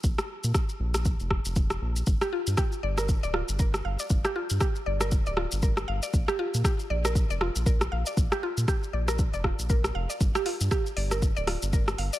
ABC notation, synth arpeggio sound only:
X:1
M:4/4
L:1/16
Q:"Swing 16ths" 1/4=118
K:Gm
V:1 name="Synth arpeggio sound"
z16 | z G F z G z d B z d F z B z f d | z G F z G z d B z d F z B z f d | z G F z G z d B z d F z B z f d |
z G F z G z d B z d F z B z f d | z G F z G z d B z d F z B z f d |]